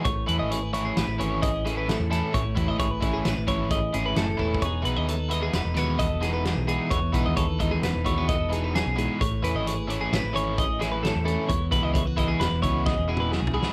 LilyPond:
<<
  \new Staff \with { instrumentName = "Clean electric guitar" } { \time 5/4 \key e \major \tempo 4 = 131 cis''8 b'16 dis''16 cis''16 b'16 cis''16 gis'16 b'8 cis''8 dis''8 gis'16 b'16 a'8 a'8 | cis''8 b'16 dis''16 cis''16 b'16 cis''16 gis'16 b'8 cis''8 dis''8 gis'16 b'16 a'8 a'8 | cis''8 b'16 dis''16 cis''16 b'16 dis''16 gis'16 b'8 cis''8 dis''8 gis'16 b'16 gis'8 gis'8 | cis''8 b'16 dis''16 cis''16 b'16 dis''16 gis'16 b'8 cis''8 dis''8 gis'16 b'16 gis'8 gis'8 |
cis''8 b'16 dis''16 cis''16 b'16 cis''16 gis'16 b'8 cis''8 dis''8 gis'16 b'16 a'8 a'8 | cis''8 b'16 dis''16 cis''16 b'16 dis''16 gis'16 b'8 cis''8 dis''8 gis'16 b'16 gis'8 gis'8 | }
  \new Staff \with { instrumentName = "Clean electric guitar" } { \time 5/4 \key e \major << { r8 e'8 gis'8 e'4 cis'8 gis'8 e'4 e'8 | r8 e'8 gis'8 e'4 cis'8 gis'8 e'4 e'8 | <b dis' gis'>8 dis'8 a'8 dis'4 b8 a'8 dis'4 dis'8 | r8 dis'8 a'8 dis'4 a16 b16 a'8 dis'4. |
r8 e'8 gis'8 e'4 cis'8 gis'8 e'4 e'8 | r8 e'8 e'16 fis'16 e'4 cis'8 gis'8 e'4. | } \\ { a,4. e4 e4. a,4 | a,4. e4 e4. a,4 | r2 r8 b,4. e,4 | e,2~ e,8 b,4. fis,8 gis,8 |
a,4. e4 e4. a,4 | e,4. e4 b,4. fis,8 gis,8 | } >> }
  \new Staff \with { instrumentName = "Overdriven electric guitar" } { \time 5/4 \key e \major r8 <e a cis' e'>8 r8 <e a cis' e'>8 r8 <e a cis' e'>8 r8 <e a cis' e'>8 r8 <e a cis' e'>8 | r8 <e a cis' e'>8 r8 <e a cis' e'>8 r8 <e a cis' e'>8 r8 <e a cis' e'>8 r8 <e a cis' e'>8 | r8 <e gis b e'>8 r8 <e gis b e'>8 r8 <e gis b e'>8 r8 <e gis b e'>8 r8 <e gis b e'>8 | r8 <e gis b e'>8 r8 <e gis b e'>8 r8 <e gis b e'>8 r8 <e gis b e'>8 r8 <e gis b e'>8 |
r8 <e a cis' e'>8 r8 <e a cis' e'>8 r8 <e a cis' e'>8 r8 <e a cis' e'>8 r8 <e a cis' e'>8 | r8 <e gis b e'>8 r8 <e gis b e'>8 r8 <e gis b e'>8 r8 <e gis b e'>8 r8 <e gis b e'>8 | }
  \new Staff \with { instrumentName = "Fingered electric bass" } { \clef bass \time 5/4 \key e \major a,,8 e,16 gis,,4~ gis,,16 a,,16 a,,16 gis,,8. a,,4 e,8 r16 | a,,8 e,16 gis,,4~ gis,,16 a,,16 a,,16 gis,,8. a,,16 gis,,8 fis,,8 e,,8 | e,,8 b,,16 dis,4~ dis,16 e,,16 e,,16 dis,8. e,,4 b,,8 r16 | e,,8 b,,16 dis,4~ dis,16 e,,16 e,,16 dis,8. e,,4 b,,8 r16 |
a,,8 e,16 gis,,4~ gis,,16 a,,16 a,,16 gis,,8. a,,4 e,8 r16 | e,,8 b,,16 cis,4~ cis,16 e,,16 e,,16 cis,8. e,,4 b,,8 r16 | }
  \new DrumStaff \with { instrumentName = "Drums" } \drummode { \time 5/4 <hh bd>8 hh8 hh8 hh8 <hh sn>8 hh8 <hh bd>8 hh8 <hh sn>8 <hh sn>8 | <hh bd>8 <hh bd>8 <hh bd>8 <hh bd>8 <hh sn>8 <hh bd>8 <hh bd>8 hh8 \tuplet 3/2 { <hh sn>16 r16 r16 bd16 r16 bd16 } | <hh bd>8 hh8 hh8 hh8 <hh sn>8 <hh sn>8 <hh bd sn>8 <hh sn>8 <hh sn>8 hh8 | <hh bd>8 <hh bd>8 <hh bd>8 <hh bd>8 <hh sn>8 <hh bd>8 <hh bd>8 hh8 <hh sn>8 hh8 |
<hh bd>8 hh8 hh8 hh8 <hh sn>8 hh8 <hh bd>8 <hh sn>8 <hh sn>8 hh8 | <hh bd>8 <hh bd>8 <hh bd>8 <hh bd>8 <hh sn>8 <hh bd>8 \tuplet 3/2 { <bd sn>8 r8 toml8 sn8 tomfh8 sn8 } | }
>>